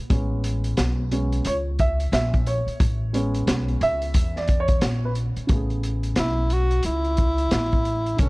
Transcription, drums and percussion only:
0.10 kick loud
0.10 closed hi-hat medium
0.44 closed hi-hat medium
0.64 closed hi-hat medium
0.77 snare loud
0.77 closed hi-hat medium
1.11 closed hi-hat medium
1.32 closed hi-hat soft
1.45 closed hi-hat loud
1.79 kick medium
1.79 closed hi-hat medium
2.00 closed hi-hat medium
2.13 snare loud
2.13 closed hi-hat medium
2.33 kick medium
2.33 closed hi-hat soft
2.46 closed hi-hat medium
2.68 closed hi-hat soft
2.80 kick loud
2.80 closed hi-hat medium
3.14 closed hi-hat medium
3.34 closed hi-hat medium
3.47 snare loud
3.47 closed hi-hat medium
3.68 closed hi-hat soft
3.81 closed hi-hat medium
4.02 closed hi-hat soft
4.14 kick loud
4.14 closed hi-hat loud
4.36 snare soft
4.47 kick medium
4.47 closed hi-hat medium
4.68 kick medium
4.68 closed hi-hat medium
4.81 snare loud
4.81 closed hi-hat medium
5.15 closed hi-hat medium
5.37 closed hi-hat soft
5.49 kick loud
5.49 closed hi-hat medium
5.70 closed hi-hat soft
5.83 closed hi-hat medium
6.03 closed hi-hat medium
6.16 snare loud
6.16 closed hi-hat medium
6.50 closed hi-hat medium
6.71 closed hi-hat soft
6.83 closed hi-hat medium
7.05 closed hi-hat soft
7.17 kick medium
7.17 closed hi-hat medium
7.38 closed hi-hat medium
7.51 snare loud
7.51 closed hi-hat medium
7.72 kick medium
7.72 closed hi-hat soft
7.85 closed hi-hat medium
8.06 closed hi-hat soft
8.18 kick loud
8.18 closed hi-hat medium

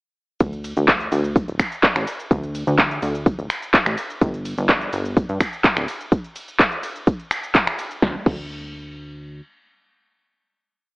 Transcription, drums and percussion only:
0.40 kick loud
0.40 closed hi-hat medium
0.40 ride medium
0.40 shaker soft
0.53 closed hi-hat soft
0.64 open hi-hat loud
0.64 ride medium
0.64 shaker medium
0.77 closed hi-hat soft
0.77 shaker soft
0.88 kick loud
0.88 clap loud
0.88 closed hi-hat loud
0.88 ride medium
0.88 shaker soft
1.01 closed hi-hat soft
1.12 open hi-hat loud
1.12 ride medium
1.12 shaker medium
1.24 closed hi-hat soft
1.24 shaker soft
1.36 kick loud
1.36 closed hi-hat loud
1.36 ride medium
1.36 shaker soft
1.48 closed hi-hat soft
1.60 finger snap medium
1.60 kick medium
1.60 open hi-hat loud
1.60 ride medium
1.60 shaker medium
1.72 closed hi-hat soft
1.72 shaker soft
1.83 kick loud
1.83 clap loud
1.83 closed hi-hat loud
1.83 ride medium
1.83 shaker soft
1.96 finger snap medium
1.96 closed hi-hat soft
2.07 open hi-hat loud
2.07 ride medium
2.07 shaker medium
2.20 closed hi-hat soft
2.20 shaker soft
2.31 kick loud
2.31 closed hi-hat medium
2.31 ride medium
2.31 shaker soft
2.43 closed hi-hat soft
2.55 open hi-hat loud
2.55 ride medium
2.55 shaker medium
2.67 closed hi-hat soft
2.67 shaker soft
2.79 kick loud
2.79 clap loud
2.79 closed hi-hat loud
2.79 ride medium
2.79 shaker soft
2.91 closed hi-hat soft
3.02 open hi-hat loud
3.02 ride medium
3.02 shaker medium
3.15 closed hi-hat soft
3.15 shaker soft
3.26 kick loud
3.26 closed hi-hat loud
3.26 ride medium
3.26 shaker soft
3.39 closed hi-hat soft
3.50 finger snap medium
3.50 open hi-hat loud
3.50 ride medium
3.50 shaker medium
3.62 closed hi-hat soft
3.62 shaker soft
3.74 kick loud
3.74 clap loud
3.74 closed hi-hat loud
3.74 ride medium
3.74 shaker soft
3.86 finger snap medium
3.86 closed hi-hat soft
3.98 open hi-hat loud
3.98 ride medium
3.98 shaker medium
4.10 closed hi-hat soft
4.10 shaker soft
4.21 kick loud
4.21 closed hi-hat medium
4.21 ride medium
4.21 shaker soft
4.34 closed hi-hat soft
4.45 open hi-hat loud
4.45 ride medium
4.45 shaker medium
4.58 closed hi-hat soft
4.58 shaker soft
4.69 kick loud
4.69 clap loud
4.69 closed hi-hat medium
4.69 ride medium
4.69 shaker soft
4.81 closed hi-hat soft
4.93 open hi-hat loud
4.93 ride medium
4.93 shaker medium
5.05 closed hi-hat soft
5.05 shaker soft
5.17 kick loud
5.17 closed hi-hat medium
5.17 ride medium
5.17 shaker soft
5.29 closed hi-hat soft
5.41 finger snap medium
5.41 kick medium
5.41 open hi-hat loud
5.41 ride medium
5.41 shaker medium
5.53 closed hi-hat soft
5.53 shaker soft
5.64 kick loud
5.64 clap loud
5.64 closed hi-hat loud
5.64 ride medium
5.64 shaker soft
5.77 finger snap medium
5.77 closed hi-hat soft
5.88 open hi-hat loud
5.88 ride medium
5.88 shaker medium
6.01 closed hi-hat soft
6.01 shaker soft
6.12 kick loud
6.12 closed hi-hat medium
6.12 ride medium
6.12 shaker soft
6.24 closed hi-hat soft
6.36 open hi-hat loud
6.36 ride medium
6.36 shaker medium
6.48 closed hi-hat soft
6.48 shaker soft
6.59 kick loud
6.59 clap loud
6.59 closed hi-hat medium
6.59 ride medium
6.59 shaker soft
6.72 closed hi-hat soft
6.83 open hi-hat loud
6.83 ride medium
6.83 shaker medium
6.96 closed hi-hat soft
6.96 shaker soft
7.07 kick loud
7.07 closed hi-hat medium
7.07 ride medium
7.07 shaker soft
7.20 closed hi-hat soft
7.31 finger snap medium
7.31 open hi-hat loud
7.31 ride medium
7.31 shaker medium
7.43 closed hi-hat soft
7.43 shaker soft
7.55 kick loud
7.55 clap loud
7.55 closed hi-hat medium
7.55 ride medium
7.55 shaker soft
7.67 finger snap medium
7.67 closed hi-hat soft
7.79 open hi-hat loud
7.79 ride medium
7.79 shaker medium
7.91 closed hi-hat soft
7.91 shaker soft
8.02 kick loud
8.02 snare medium
8.26 kick loud
8.26 crash medium

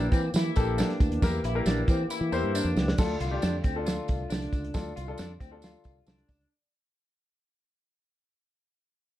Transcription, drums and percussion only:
0.12 kick loud
0.12 closed hi-hat medium
0.12 tambourine medium
0.34 snare loud
0.34 tambourine loud
0.56 kick loud
0.56 closed hi-hat medium
0.56 tambourine medium
0.78 snare loud
0.78 tambourine loud
0.90 snare soft
0.90 closed hi-hat soft
1.00 kick loud
1.00 closed hi-hat medium
1.00 tambourine medium
1.12 closed hi-hat medium
1.22 kick loud
1.22 snare loud
1.22 tambourine medium
1.44 closed hi-hat medium
1.44 tambourine medium
1.66 snare loud
1.66 tambourine loud
1.88 kick loud
1.88 closed hi-hat medium
1.88 tambourine medium
2.10 tambourine loud
2.32 tambourine medium
2.55 tambourine loud
2.76 snare loud
2.76 tambourine medium
2.88 snare loud
2.98 kick loud
2.98 snare loud
2.98 crash medium
2.98 tambourine medium
3.20 closed hi-hat medium
3.20 tambourine soft
3.42 snare loud
3.42 tambourine loud
3.64 kick loud
3.64 closed hi-hat medium
3.64 tambourine medium
3.87 snare loud
3.87 tambourine loud
4.08 kick loud
4.08 closed hi-hat medium
4.08 tambourine medium
4.30 snare loud
4.30 tambourine medium
4.42 snare soft
4.42 closed hi-hat soft
4.53 kick medium
4.53 closed hi-hat medium
4.53 tambourine medium
4.64 closed hi-hat soft
4.74 kick loud
4.74 snare loud
4.74 tambourine medium
4.97 closed hi-hat medium
4.97 tambourine soft
5.18 snare loud
5.18 tambourine loud
5.40 kick medium
5.40 closed hi-hat medium
5.40 tambourine medium
5.62 snare loud
5.62 tambourine loud
5.84 kick medium
5.84 closed hi-hat medium
5.84 tambourine medium
6.07 snare loud
6.07 tambourine medium
6.18 closed hi-hat soft
6.29 kick medium
6.29 closed hi-hat medium
6.29 tambourine medium
6.41 closed hi-hat soft

